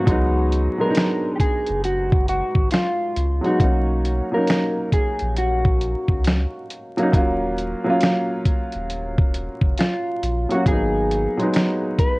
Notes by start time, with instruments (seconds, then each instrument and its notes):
Already playing: clean electric guitar F#4
0.06 sub bass C#2, upright piano F#3 G#3 B3, kick, closed hi-hat
0.11 upright piano D#4
0.52 closed hi-hat
0.78 upright piano F#3 G#3 B3, clean electric guitar A#4
0.84 upright piano D4
0.90 upright piano D#4
0.95 finger snap, snare, closed hi-hat
1.36 clean electric guitar G4
1.40 clean electric guitar G#4, kick, closed hi-hat
1.66 sub bass F#1, closed hi-hat
1.84 clean electric guitar F#4, closed hi-hat
2.12 kick
2.28 clean electric guitar F#4, closed hi-hat
2.55 sub bass G#1, kick
2.71 clean electric guitar F4, finger snap, snare, closed hi-hat
3.17 sub bass C#2, closed hi-hat
3.41 upright piano F#3 G#3 B3, closed hi-hat
3.46 upright piano D#4, clean electric guitar F#4
3.58 sub bass B1, upright piano F#3 A#3 C#4, kick, closed hi-hat
3.64 upright piano D#4
4.05 closed hi-hat
4.32 upright piano F#3 A#3 C#4, clean electric guitar A#4
4.37 upright piano D#4
4.47 finger snap, snare, closed hi-hat
4.93 clean electric guitar G#4, kick, closed hi-hat
5.19 sub bass A#1, closed hi-hat
5.37 clean electric guitar F#4, closed hi-hat
5.65 kick
5.81 closed hi-hat
6.08 sub bass C#2, kick
6.24 finger snap, snare, closed hi-hat
6.70 closed hi-hat
6.97 upright piano F#3 A#3 C#4, closed hi-hat
7.02 upright piano D#4
7.12 sub bass D#1, upright piano F#3 A#3 C#4, kick, closed hi-hat
7.17 upright piano F4
7.58 closed hi-hat
7.84 upright piano F#3 A#3 C#4
7.90 upright piano F4
8.01 finger snap, snare, closed hi-hat
8.46 kick, closed hi-hat
8.72 sub bass D#1, closed hi-hat
8.90 closed hi-hat
9.18 kick
9.34 closed hi-hat
9.61 sub bass F1, kick
9.78 clean electric guitar F4, finger snap, snare, closed hi-hat
10.23 sub bass A#1, closed hi-hat
10.49 upright piano F#3 A#3 C#4, clean electric guitar F#4, closed hi-hat
10.55 upright piano F#4
10.66 sub bass G#1, upright piano F#3 A#3 B3, clean electric guitar G#4, kick, closed hi-hat
10.72 upright piano D#4
11.11 closed hi-hat
11.37 upright piano F#3 G#3 B3, closed hi-hat
11.42 upright piano D#4
11.53 finger snap, snare, closed hi-hat
11.99 clean electric guitar B4, kick, closed hi-hat